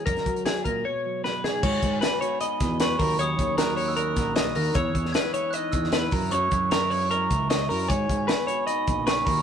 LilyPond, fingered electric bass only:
\new Staff \with { instrumentName = "Fingered electric bass" } { \clef bass \time 4/4 \key gis \minor \tempo 4 = 153 fis,16 r16 fis4 ais,8 r2 | gis,8 gis,8 r4. e,4 dis,8 | dis,8 dis,2 ais,,4 dis,8 | e,8 e,8 r4. e,4 fis,8 |
fis,8 fis,2 cis,4 fis,8 | gis,8 gis,8 r4. ais,,4 dis,8 | }